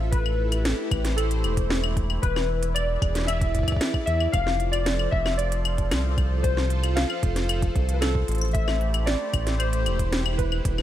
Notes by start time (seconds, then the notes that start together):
Already playing: A1 F3 F4 A4 E5
0.11 A3 B4, kick, closed hi-hat
0.25 E4, claves
0.49 G4, closed hi-hat, claves
0.65 snare, closed hi-hat
0.91 A1 C5, kick, closed hi-hat, claves
1.05 snare, closed hi-hat
1.16 A4, closed hi-hat, claves
1.31 closed hi-hat
1.44 E1, closed hi-hat, claves
1.57 kick, closed hi-hat
1.70 snare
1.84 claves
1.97 kick, closed hi-hat
2.10 claves
2.22 E1 E3 B4, kick, closed hi-hat
2.36 snare, claves
2.63 closed hi-hat
2.74 D5, closed hi-hat, claves
2.85 G#4
3.02 E1, kick, closed hi-hat, claves
3.15 snare, closed hi-hat
3.18 snare
3.22 snare
3.25 E5, snare, closed hi-hat, claves
3.41 kick, closed hi-hat
3.55 kick, closed hi-hat
3.59 kick
3.63 kick
3.68 kick, closed hi-hat, claves
3.72 kick
3.76 kick
3.81 snare, closed hi-hat
3.94 kick, claves
4.06 E2 E5, closed hi-hat
4.20 claves
4.32 F1 F3 F5, kick, closed hi-hat, claves
4.47 snare
4.51 F4
4.60 C5, closed hi-hat
4.72 D5, closed hi-hat, claves
4.82 A4
4.86 snare, closed hi-hat
4.99 claves
5.11 F1 E5, kick
5.26 snare, claves
5.37 D5, closed hi-hat
5.52 closed hi-hat
5.65 closed hi-hat, claves
5.78 kick, closed hi-hat
5.91 C2, snare, closed hi-hat, claves
6.18 kick, closed hi-hat, claves
6.43 C5, kick, closed hi-hat
6.57 snare
6.70 closed hi-hat
6.83 closed hi-hat, claves
6.95 F5, snare, closed hi-hat
7.10 claves
7.23 F1, kick, closed hi-hat
7.36 snare, closed hi-hat
7.49 closed hi-hat, claves
7.62 kick, closed hi-hat
7.76 C2, kick, closed hi-hat
7.89 closed hi-hat
7.93 B4
8.00 A4, snare, closed hi-hat, claves
8.15 kick
8.28 A1, closed hi-hat
8.32 closed hi-hat
8.35 closed hi-hat
8.38 closed hi-hat
8.41 closed hi-hat, claves
8.45 closed hi-hat
8.48 closed hi-hat
8.51 A3 E5, kick, closed hi-hat
8.55 closed hi-hat
8.67 E4 G4, snare, claves
8.81 closed hi-hat
8.94 closed hi-hat, claves
9.06 D5, snare, closed hi-hat
9.33 A1 C5, kick, closed hi-hat, claves
9.47 snare, closed hi-hat
9.58 C5, closed hi-hat, claves
9.73 closed hi-hat
9.86 E1, closed hi-hat, claves
9.99 kick, closed hi-hat
10.13 snare, closed hi-hat
10.26 claves
10.37 B4, kick, closed hi-hat
10.52 claves
10.65 E1 E3, kick, closed hi-hat
10.77 G#4, snare, claves